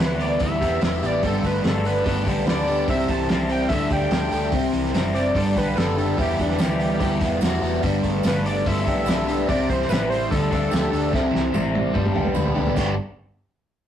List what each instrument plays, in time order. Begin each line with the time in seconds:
Already playing: overdriven electric guitar E3
0.00 fingered electric bass D2, overdriven electric guitar G3 B3 E4, analog synth lead B4, snare
0.19 overdriven electric guitar B3, analog synth lead D5, open hi-hat
0.40 fingered electric bass D2, overdriven electric guitar E3 G3 B3 E4, analog synth lead E5, kick, open hi-hat
0.60 fingered electric bass E1, overdriven electric guitar G3 B3 E4 G4, kick, snare, open hi-hat
0.80 fingered electric bass E1, overdriven electric guitar E3 G3 B3 E4 B4, snare, open hi-hat
1.02 fingered electric bass A1, overdriven electric guitar G3 B3 E4 G4, open hi-hat
1.06 analog synth lead D5
1.22 fingered electric bass G1, overdriven electric guitar G2 D3 G3 B3 D4, kick, open hi-hat
1.26 analog synth lead A4
1.44 fingered electric bass G1, overdriven electric guitar A3, analog synth lead B4, kick, open hi-hat
1.63 fingered electric bass G1, overdriven electric guitar D3 G3 A3 B3 D4, snare, open hi-hat
1.68 analog synth lead A4
1.85 overdriven electric guitar D4, analog synth lead B4, open hi-hat
2.04 fingered electric bass G1, overdriven electric guitar G2 D3 G3 A3 B3 D4, kick, open hi-hat
2.24 fingered electric bass B1, overdriven electric guitar G3 B3 D4 G4, kick, snare, open hi-hat
2.46 fingered electric bass D2, overdriven electric guitar D3 G3 B3 D4 B4, analog synth lead D5, snare, open hi-hat
2.68 overdriven electric guitar G3 B3 D4 G4, open hi-hat
2.88 fingered electric bass C2, overdriven electric guitar C3 G3 C4 E4, analog synth lead E5, kick, open hi-hat
3.08 fingered electric bass C2, overdriven electric guitar E3, analog synth lead A5, kick, open hi-hat
3.29 fingered electric bass C2, overdriven electric guitar C3 G3 C4 E4, snare, open hi-hat
3.49 overdriven electric guitar C4, analog synth lead G5, open hi-hat
3.69 fingered electric bass D2, overdriven electric guitar D3 G3 A3, analog synth lead E5, kick, open hi-hat
3.74 overdriven electric guitar D4
3.90 fingered electric bass D2, overdriven electric guitar G3 A3 D4 G4, analog synth lead G5, kick, open hi-hat
4.11 fingered electric bass D2, overdriven electric guitar D3 G3 A3 D4 A4, snare, open hi-hat
4.32 fingered electric bass D2, overdriven electric guitar G3 A3 D4 G4, open hi-hat
4.52 fingered electric bass C2, overdriven electric guitar C3 G3 C4 E4, kick, open hi-hat
4.73 fingered electric bass C2, overdriven electric guitar E3, open hi-hat
4.85 snare
4.93 fingered electric bass F#1, overdriven electric guitar C3 G3 C4 E4, snare, open hi-hat
5.14 overdriven electric guitar C4, analog synth lead D5, open hi-hat
5.34 fingered electric bass G1, overdriven electric guitar G2 D3 G3 B3, kick, open hi-hat
5.38 overdriven electric guitar D4
5.56 fingered electric bass B1, overdriven electric guitar G3 B3 D4 G4, analog synth lead B4, kick, snare, open hi-hat
5.76 fingered electric bass F#1, overdriven electric guitar D3 G3 B3 D4 B4, analog synth lead A4, snare, open hi-hat
5.97 overdriven electric guitar G3 B3 D4 G4, open hi-hat
6.17 fingered electric bass E1, overdriven electric guitar E3 G3 B3 E4, kick, open hi-hat
6.21 analog synth lead G4
6.38 fingered electric bass E1, overdriven electric guitar G3, analog synth lead D4, kick, open hi-hat
6.50 snare
6.58 fingered electric bass D2, overdriven electric guitar E3 G3 B3 E4, analog synth lead G4, snare, open hi-hat, tambourine
6.80 overdriven electric guitar G3, open hi-hat
6.99 fingered electric bass D2, overdriven electric guitar E3 G3 B3 E4, kick, open hi-hat
7.20 fingered electric bass E1, overdriven electric guitar G3 B3 E4, kick, snare, open hi-hat
7.41 fingered electric bass E1, overdriven electric guitar E3 G3 B3 E4 F#4, snare, open hi-hat, tambourine
7.62 fingered electric bass E1, overdriven electric guitar G3 B3 E4, open hi-hat
7.83 fingered electric bass G1, overdriven electric guitar G2 D3 G3 B3 D4, kick, open hi-hat
8.03 fingered electric bass G1, overdriven electric guitar A3, kick, open hi-hat
8.23 fingered electric bass G1, overdriven electric guitar D3 G3 A3 B3 D4, snare, open hi-hat, tambourine
8.28 analog synth lead B4
8.45 overdriven electric guitar D4, analog synth lead D5, open hi-hat
8.65 fingered electric bass G1, overdriven electric guitar G2 D3 G3 A3 B3 D4, analog synth lead E5, kick, open hi-hat
8.85 fingered electric bass B1, overdriven electric guitar G3 B3 D4 G4, kick, open hi-hat
9.05 fingered electric bass B1, overdriven electric guitar D3 G3 B3 D4 B4, snare, open hi-hat, tambourine
9.27 overdriven electric guitar G3 B3 D4 G4, open hi-hat
9.47 fingered electric bass C2, overdriven electric guitar C3 G3 C4 E4, analog synth lead D5, kick, open hi-hat
9.70 fingered electric bass C2, overdriven electric guitar E3, analog synth lead C5, kick, open hi-hat
9.81 snare
9.88 fingered electric bass A1, overdriven electric guitar C3 E3 G3 C4 E4, analog synth lead B4, open hi-hat, tambourine
9.92 snare
10.10 overdriven electric guitar G3, analog synth lead C5, open hi-hat
10.30 fingered electric bass D2, overdriven electric guitar D3 G3 A3 D4, analog synth lead A4, kick, open hi-hat
10.51 fingered electric bass D2, overdriven electric guitar G3 A3 D4, kick, snare, open hi-hat
10.70 fingered electric bass D2, overdriven electric guitar D3 G3 A3 D4 G4, snare, open hi-hat, tambourine
10.91 fingered electric bass D2, overdriven electric guitar G3 A3 D4, open hi-hat
11.12 fingered electric bass C2, overdriven electric guitar C3 G3 C4 E4, kick, snare
11.31 fingered electric bass C2, overdriven electric guitar E3, snare
11.52 fingered electric bass A1, overdriven electric guitar C3 E3 G3 C4 E4, high tom, tambourine
11.73 overdriven electric guitar G3, high tom
11.93 fingered electric bass G1, overdriven electric guitar G2 D3 G3 B3 D4, kick, mid tom
12.06 mid tom
12.14 fingered electric bass B1, overdriven electric guitar G3 B3 D4 G4, mid tom
12.25 mid tom
12.34 fingered electric bass D2, overdriven electric guitar D3 G3 B3 D4 B4, mid tom, tambourine
12.46 floor tom
12.54 overdriven electric guitar G3 B3 D4 G4, floor tom
12.66 floor tom
12.75 fingered electric bass G1, overdriven electric guitar G2 D3 G3 B3 D4 G4, kick, crash, tambourine